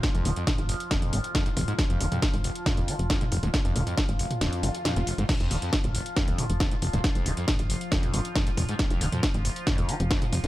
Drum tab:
CC |----------------|----------------|----------------|x---------------|
HH |xxoxxxoxxxoxxxox|xxoxxxoxxxoxxxox|xxoxxxoxxxoxxxox|xxoxxxoxxxoxxxox|
SD |o---o---o---o---|o---o---o---o---|o---o---o---o---|o---o---o---o---|
T2 |----o----o----o-|---o----o----o--|--o----o----o---|o----o----o----o|
BD |o---o---o---o---|o---o---o---o---|o---o-----------|o---o---o---o---|

CC |----------------|----------------|
HH |xxoxxxoxxxoxxxox|xxoxxxoxxxoxxxox|
SD |o---o---o---o---|o---o---o---o---|
T2 |----o----o----o-|---o----o----o--|
BD |o---o---o---o---|o---o---o---o---|